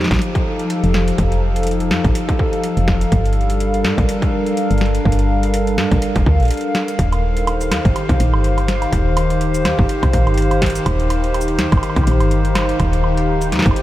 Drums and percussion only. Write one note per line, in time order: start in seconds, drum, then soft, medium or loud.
0.01 snare medium
0.04 snare medium
0.08 kick loud
0.08 snare medium
0.11 snare medium
0.11 closed hi-hat soft
0.14 snare medium
0.16 snare medium
0.19 snare loud
0.19 closed hi-hat medium
0.35 kick loud
0.35 closed hi-hat soft
0.59 closed hi-hat soft
0.70 closed hi-hat medium
0.84 closed hi-hat soft
0.94 snare loud
1.08 closed hi-hat soft
1.18 kick medium
1.18 closed hi-hat medium
1.32 closed hi-hat soft
1.56 closed hi-hat soft
1.63 closed hi-hat soft
1.67 closed hi-hat medium
1.80 closed hi-hat soft
1.91 snare loud
2.04 kick loud
2.04 closed hi-hat soft
2.15 closed hi-hat medium
2.29 kick loud
2.29 closed hi-hat soft
2.39 kick loud
2.53 closed hi-hat soft
2.64 closed hi-hat medium
2.77 closed hi-hat soft
2.88 kick loud
2.88 snare loud
3.01 closed hi-hat soft
3.12 kick medium
3.12 closed hi-hat medium
3.25 closed hi-hat soft
3.33 closed hi-hat soft
3.41 closed hi-hat soft
3.50 closed hi-hat medium
3.60 closed hi-hat medium
3.74 closed hi-hat soft
3.85 snare loud
3.98 kick loud
3.98 closed hi-hat soft
4.09 closed hi-hat medium
4.22 kick loud
4.22 closed hi-hat soft
4.46 closed hi-hat soft
4.57 closed hi-hat medium
4.71 closed hi-hat soft
4.78 snare loud
4.78 closed hi-hat soft
4.86 closed hi-hat soft
4.95 closed hi-hat medium
5.05 kick medium
5.12 closed hi-hat medium
5.19 closed hi-hat soft
5.43 closed hi-hat medium
5.54 closed hi-hat medium
5.67 closed hi-hat soft
5.78 snare loud
5.92 kick loud
5.92 closed hi-hat soft
6.02 closed hi-hat medium
6.16 kick loud
6.16 closed hi-hat soft
6.26 kick loud
6.40 closed hi-hat soft
6.43 closed hi-hat soft
6.45 closed hi-hat soft
6.48 closed hi-hat soft
6.51 closed hi-hat medium
6.54 closed hi-hat soft
6.57 closed hi-hat soft
6.61 closed hi-hat soft
6.75 snare loud
6.75 closed hi-hat soft
6.88 closed hi-hat medium
6.99 kick medium
6.99 closed hi-hat medium
7.13 closed hi-hat soft
7.13 high woodblock medium
7.37 closed hi-hat soft
7.47 closed hi-hat medium
7.47 high woodblock medium
7.61 closed hi-hat soft
7.61 shaker medium
7.72 snare loud
7.72 closed hi-hat loud
7.72 high woodblock medium
7.85 kick loud
7.85 closed hi-hat soft
7.96 closed hi-hat medium
7.96 high woodblock medium
8.09 kick loud
8.09 closed hi-hat soft
8.20 closed hi-hat loud
8.34 high woodblock medium
8.44 closed hi-hat medium
8.58 closed hi-hat soft
8.58 high woodblock medium
8.68 snare loud
8.68 closed hi-hat medium
8.82 closed hi-hat soft
8.82 high woodblock medium
8.93 kick medium
8.93 closed hi-hat medium
9.17 closed hi-hat medium
9.17 high woodblock medium
9.30 closed hi-hat soft
9.41 closed hi-hat medium
9.54 closed hi-hat soft
9.54 shaker medium
9.65 snare loud
9.65 closed hi-hat loud
9.65 high woodblock medium
9.79 kick loud
9.89 closed hi-hat medium
10.03 kick loud
10.03 closed hi-hat soft
10.03 high woodblock medium
10.13 kick loud
10.13 closed hi-hat loud
10.27 closed hi-hat soft
10.27 high woodblock medium
10.34 closed hi-hat soft
10.38 closed hi-hat medium
10.51 closed hi-hat soft
10.51 high woodblock medium
10.62 kick loud
10.62 snare loud
10.62 closed hi-hat medium
10.66 closed hi-hat medium
10.70 closed hi-hat medium
10.75 closed hi-hat soft
10.75 shaker medium
10.86 kick medium
10.86 closed hi-hat medium
10.86 high woodblock medium
11.00 closed hi-hat soft
11.10 closed hi-hat loud
11.10 high woodblock medium
11.24 closed hi-hat soft
11.34 closed hi-hat medium
11.34 high woodblock medium
11.41 shaker medium
11.48 closed hi-hat soft
11.59 snare loud
11.59 closed hi-hat loud
11.72 kick loud
11.72 closed hi-hat soft
11.72 high woodblock medium
11.78 high woodblock medium
11.83 closed hi-hat medium
11.83 high woodblock soft
11.90 high woodblock soft
11.96 kick loud
11.96 closed hi-hat soft
11.96 high woodblock soft
12.03 closed hi-hat loud
12.03 high woodblock soft
12.11 high woodblock soft
12.20 closed hi-hat soft
12.20 high woodblock medium
12.31 closed hi-hat medium
12.45 closed hi-hat soft
12.55 snare loud
12.55 closed hi-hat medium
12.55 high woodblock medium
12.59 high woodblock medium
12.62 high woodblock soft
12.69 closed hi-hat soft
12.80 kick medium
12.80 closed hi-hat medium
12.80 high woodblock soft
12.93 closed hi-hat soft
13.04 high woodblock medium
13.17 closed hi-hat soft
13.42 closed hi-hat soft
13.42 shaker medium
13.52 snare medium
13.52 closed hi-hat medium
13.56 snare medium
13.59 snare medium
13.62 kick loud
13.62 snare loud
13.62 closed hi-hat soft
13.71 high woodblock soft
13.76 closed hi-hat medium